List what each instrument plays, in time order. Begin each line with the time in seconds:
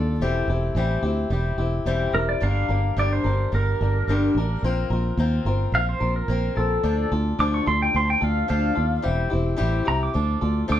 Already playing: fingered electric bass D#2, steel-string acoustic guitar D4 F4 A4, pedal steel guitar A4
0.20 fingered electric bass E1, steel-string acoustic guitar E3 G3 C4 E4 G4
0.48 fingered electric bass E1, steel-string acoustic guitar E4 G4
0.52 steel-string acoustic guitar C4
0.75 fingered electric bass A1, steel-string acoustic guitar E3 G3 C4 E4 G4
1.02 fingered electric bass D2, steel-string acoustic guitar C4 E4 G4
1.30 fingered electric bass E1, steel-string acoustic guitar G3 C4 E4 G4
1.58 fingered electric bass E1, steel-string acoustic guitar C4 E4 G4
1.85 fingered electric bass E1, steel-string acoustic guitar E3 G3 C4 E4 G4
2.12 fingered electric bass E1, steel-string acoustic guitar C4 E4 G4, pedal steel guitar A#4
2.29 pedal steel guitar D5
2.40 fingered electric bass G1, steel-string acoustic guitar G2 D3 G3 A#3 D4 A#4, pedal steel guitar F5
2.68 fingered electric bass G1, steel-string acoustic guitar G3 A#3 D4 A#4
2.97 fingered electric bass G1, steel-string acoustic guitar G2 D3 G3 A#3 D4 A#4, pedal steel guitar D5
3.13 pedal steel guitar C5
3.24 fingered electric bass G1, steel-string acoustic guitar G3 A#3 D4 A#4
3.52 fingered electric bass G1, steel-string acoustic guitar G3 A#3 D4 A#4, pedal steel guitar A#4
3.81 fingered electric bass G1, steel-string acoustic guitar G3 A#3 D4 A#4
4.07 fingered electric bass G1, steel-string acoustic guitar G2 D3 G3 A#3 D4 A#4
4.35 fingered electric bass A1, steel-string acoustic guitar D4 A#4
4.39 steel-string acoustic guitar G3 A#3
4.63 fingered electric bass A#1, steel-string acoustic guitar A#3 C4 F4 A#4
4.90 fingered electric bass A#1, steel-string acoustic guitar C4 F4 A#4
5.17 fingered electric bass D#2, steel-string acoustic guitar A#3 C4 F4 A#4
5.45 fingered electric bass G1, steel-string acoustic guitar C4 F4 A#4
5.72 fingered electric bass A#1, steel-string acoustic guitar A#3 C4 F4 A#4, pedal steel guitar F5
5.89 pedal steel guitar C5
6.00 fingered electric bass A#1, steel-string acoustic guitar C4 F4 A#4
6.16 pedal steel guitar A#4
6.28 fingered electric bass A#1, steel-string acoustic guitar A#3 C4 F4 A#4
6.55 fingered electric bass A#1, steel-string acoustic guitar C4 F4 A#4, pedal steel guitar A4
6.83 fingered electric bass D2, steel-string acoustic guitar D3 F3 D4 F4 A4
7.12 fingered electric bass D2, steel-string acoustic guitar D4 F4 A4
7.39 fingered electric bass D2, steel-string acoustic guitar D3 F3 D4 F4 A4, pedal steel guitar D6
7.54 pedal steel guitar C#6
7.66 fingered electric bass D2, steel-string acoustic guitar D4 F4 A4, pedal steel guitar C6
7.82 pedal steel guitar G5
7.94 fingered electric bass D2, steel-string acoustic guitar F3 D4 F4 A4, pedal steel guitar C6
8.10 pedal steel guitar G5
8.21 fingered electric bass D2, steel-string acoustic guitar D4 F4 A4, pedal steel guitar F5
8.48 fingered electric bass D2, steel-string acoustic guitar D3 F3 D4 F4 A4, pedal steel guitar F5
8.75 fingered electric bass D#2, steel-string acoustic guitar D4 F4 A4
9.02 fingered electric bass E1, steel-string acoustic guitar E3 G3 C4 E4 G4
9.30 fingered electric bass E1, steel-string acoustic guitar C4 E4 G4
9.57 fingered electric bass A1, steel-string acoustic guitar E3 G3 C4 E4 G4
9.85 fingered electric bass C2, steel-string acoustic guitar C4 E4 G4, pedal steel guitar A#5
10.03 pedal steel guitar D6
10.14 fingered electric bass D2, steel-string acoustic guitar F3 D4 F4 A4
10.41 fingered electric bass D2, steel-string acoustic guitar D4 F4 A4
10.68 fingered electric bass D2, steel-string acoustic guitar D3 F3 D4 F4 A4
10.72 pedal steel guitar D6